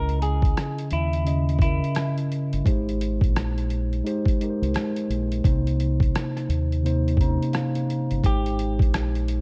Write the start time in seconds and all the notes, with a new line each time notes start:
Already playing: C#2 C#3 C#4 E4 A#4 D#5
0.09 closed hi-hat
0.22 G#4, closed hi-hat
0.42 kick, closed hi-hat
0.57 cross-stick, closed hi-hat
0.78 closed hi-hat
0.91 D#2 E4, closed hi-hat
1.13 closed hi-hat
1.24 C#3 C#4 E4 D#5, closed hi-hat
1.49 closed hi-hat
1.59 C#3 C#4 E4, kick, closed hi-hat
1.63 E4 A#4
1.84 closed hi-hat
1.95 cross-stick, closed hi-hat
2.18 closed hi-hat
2.32 closed hi-hat
2.53 G1, closed hi-hat
2.64 G#1 G#3 D#4 G4 C5, kick, closed hi-hat
2.89 closed hi-hat
3.01 closed hi-hat
3.21 A#1, kick, closed hi-hat
3.36 cross-stick, closed hi-hat
3.58 closed hi-hat
3.70 closed hi-hat
3.93 closed hi-hat
4.04 G#3 D#4 G4 C5, closed hi-hat
4.26 kick, closed hi-hat
4.41 G#3 D#4 G4 A#4, closed hi-hat
4.50 C5
4.62 C2, closed hi-hat
4.74 cross-stick, closed hi-hat
4.96 closed hi-hat
5.10 A#1, closed hi-hat
5.32 closed hi-hat
5.44 C2 C3 A#3 D#4 C5, kick, closed hi-hat
5.67 closed hi-hat
5.80 closed hi-hat
6.00 kick, closed hi-hat
6.15 cross-stick, closed hi-hat
6.37 cross-stick, closed hi-hat
6.49 D#2, closed hi-hat
6.72 closed hi-hat
6.83 C3 A#3 D#4 C5, closed hi-hat
7.08 closed hi-hat
7.17 C3 A#3 A#5, kick, closed hi-hat
7.21 C#4 C5
7.28 D#4
7.42 closed hi-hat
7.53 F5, cross-stick, closed hi-hat
7.75 closed hi-hat
7.90 closed hi-hat
8.11 G1, closed hi-hat
8.23 G#1 G#3 D#4 G4 C5, kick, closed hi-hat
8.46 closed hi-hat
8.59 closed hi-hat
8.79 A#1, kick, closed hi-hat
8.94 cross-stick, closed hi-hat
9.15 closed hi-hat
9.28 closed hi-hat